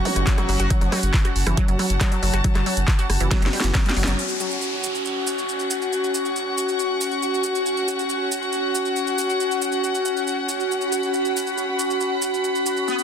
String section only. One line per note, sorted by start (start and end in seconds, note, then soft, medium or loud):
0.00 4.17 C#4 medium
0.00 4.18 F#4 medium
0.00 4.18 F#5 medium
0.00 1.34 C#6 medium
1.32 4.20 A5 medium
4.18 13.03 C#4 medium
4.27 13.03 F#4 medium
4.96 10.95 C#6 medium
5.18 13.03 F#5 medium
10.82 13.03 B5 medium